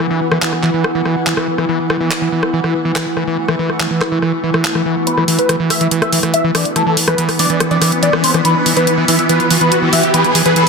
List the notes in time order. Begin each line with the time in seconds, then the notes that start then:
Already playing: E3 B3 E4 B4 F#5
0.10 E3
0.32 E3, cross-stick
0.42 E3, clap
0.53 cross-stick
0.63 E3, clap
0.74 E3
0.84 cross-stick
0.95 E3
1.05 E3, cross-stick
1.27 E3, clap
1.37 E3, cross-stick
1.58 E3, cross-stick
1.69 E3 A3
1.90 E3, cross-stick
2.01 E3
2.11 cross-stick, clap
2.22 E3
2.32 E3
2.43 cross-stick
2.53 E3
2.64 E3, cross-stick
2.85 E3
2.96 E3, cross-stick, clap
3.17 E3, cross-stick
3.27 E3
3.48 E3, cross-stick
3.59 E3
3.70 cross-stick
3.80 E3, clap
3.91 E3
4.01 cross-stick, clap
4.12 E3
4.22 E3, cross-stick
4.43 E3
4.54 E3, cross-stick
4.65 clap
4.75 E3, cross-stick
4.86 E3
5.07 E3 B3 B4, closed hi-hat, riser
5.17 E3, cross-stick
5.28 E3, open hi-hat
5.39 B4, closed hi-hat
5.49 E3, cross-stick, closed hi-hat
5.60 E3
5.70 E5, cross-stick, open hi-hat
5.81 E3, closed hi-hat
5.91 E3, closed hi-hat
6.02 E5, cross-stick, closed hi-hat
6.12 E3, open hi-hat
6.23 E3, cross-stick, closed hi-hat
6.34 E5, closed hi-hat
6.44 E3
6.55 E3 D5, cross-stick, open hi-hat
6.65 closed hi-hat
6.76 E3 A4, cross-stick, closed hi-hat
6.86 E3
6.97 open hi-hat
7.08 E3 B4, cross-stick, closed hi-hat
7.18 E3, closed hi-hat
7.29 cross-stick, open hi-hat
7.39 E3 D5, open hi-hat
7.50 E3, closed hi-hat
7.60 cross-stick, closed hi-hat
7.71 E3 D5, closed hi-hat
7.82 E3, cross-stick, open hi-hat
7.92 closed hi-hat
8.03 E3 D5, closed hi-hat
8.13 E3, cross-stick
8.24 C5, open hi-hat
8.34 E3, cross-stick, closed hi-hat
8.45 E3 B4, closed hi-hat
8.66 E3, open hi-hat
8.77 E3 B4, closed hi-hat
8.87 closed hi-hat
8.98 E3
9.08 E3 E5, open hi-hat
9.19 closed hi-hat
9.29 E3 B4, closed hi-hat
9.40 closed hi-hat
9.51 E3, open hi-hat
9.61 E3 B4, closed hi-hat
9.72 closed hi-hat
9.82 E3
9.93 E3 E5, open hi-hat
10.03 closed hi-hat
10.14 E3 B4, closed hi-hat
10.24 closed hi-hat
10.35 E3, open hi-hat
10.46 E3 B4, closed hi-hat
10.56 E3 B4, closed hi-hat